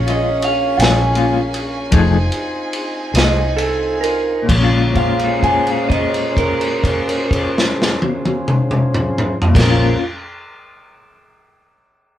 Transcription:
Already playing: fingered electric bass A#1, saxophone section A#3 C#4 G#5, tonewheel organ C#4 F4 G#4 C#5
0.06 clean electric guitar G#3 C#4 F4 D#5, ride
0.42 clean electric guitar F5, ride
0.78 fingered electric bass A#1, clean electric guitar G#3 C#4 F4 G#5, ride
0.82 snare
1.15 clean electric guitar A#2 G#3 C#4 F4, ride
1.54 ride
1.91 fingered electric bass F1, clean electric guitar F3 A3 D#4 G#4, saxophone section C4 D#4, tonewheel organ C5, kick, ride
1.95 tonewheel organ D#4 F4 G#5
2.32 ride
2.73 ride
3.13 fingered electric bass C2, clean electric guitar A3 D#4 G#4 D#5, snare, ride
3.57 clean electric guitar A4, ride
4.01 clean electric guitar A#4, ride
4.42 clean electric guitar A#2, tonewheel organ G#4 C#5
4.46 fingered electric bass A#1, tonewheel organ D3 F#3, saxophone section C#4, kick, crash
4.51 clean electric guitar G#3, saxophone section A#3 G#4
4.58 clean electric guitar C#4
4.63 clean electric guitar F4
4.91 tonewheel organ C#4 F4 G#4 C5, crash
4.95 clean electric guitar F5, kick
5.19 crash
5.43 clean electric guitar G#5, kick, crash
5.67 clean electric guitar F5, crash
5.89 clean electric guitar D#5, kick, crash
6.14 crash
6.37 clean electric guitar A#4, kick, crash
6.61 crash
6.84 kick, crash
7.09 crash
7.31 kick, crash
7.58 snare
7.82 snare
8.02 high tom
8.26 high tom
8.48 mid tom
8.71 mid tom
8.94 mid tom
9.18 mid tom
9.42 floor tom
9.48 clean electric guitar A#2
9.55 fingered electric bass A#1, clean electric guitar G#3 A#4, saxophone section A#3 C#4 G#4, tonewheel organ C#4 F4 G#4 C5, kick, snare, crash
9.64 clean electric guitar C#4
9.70 clean electric guitar F4

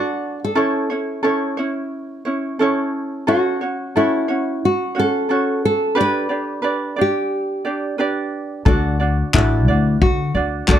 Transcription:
Already playing: ukulele D4 F#4 A4 D5, nylon-string guitar F#4
0.44 nylon-string guitar A4
0.55 ukulele C#4 E4 A4 C#5
0.90 ukulele C#4 E4 C#5
1.23 ukulele C#4 E4 A4 C#5
1.57 ukulele C#4 E4 C#5
2.25 ukulele C#4 E4 C#5
2.59 ukulele C#4 E4 A4 C#5
3.27 ukulele C#4 F#4 A4 C#5, nylon-string guitar F#4
3.61 ukulele C#4 F#4 C#5
3.96 ukulele C#4 F#4 A4 C#5, nylon-string guitar E4
4.28 ukulele C#4 F#4 C#5
4.65 nylon-string guitar F#4
4.95 ukulele C#4 F#4 C#5
4.99 nylon-string guitar A4
5.29 ukulele C#4 F#4 A4 C#5
5.65 nylon-string guitar A4
5.95 ukulele D4 G4 B4 D5
6.01 nylon-string guitar B4
6.29 ukulele D4 G4 D5
6.62 ukulele D4 G4 B4 D5
6.96 ukulele D4 G4 D5
7.01 nylon-string guitar G4
7.65 ukulele D4 G4 D5
7.98 ukulele D4 G4 B4 D5
8.65 upright bass D2, ukulele D4 F#4 A4 D5, nylon-string guitar F#4, kick
9.00 ukulele D4 F#4 D5
9.34 upright bass A1, ukulele D4 F#4 A4 D5, nylon-string guitar E4, kick, clap
9.68 upright bass D2, ukulele D4 F#4 D5
10.02 upright bass D3, nylon-string guitar F#4, kick
10.35 upright bass D2, ukulele D4 F#4 D5
10.68 upright bass D2, ukulele D4 F#4 A4 D5, nylon-string guitar F#4, kick, clap

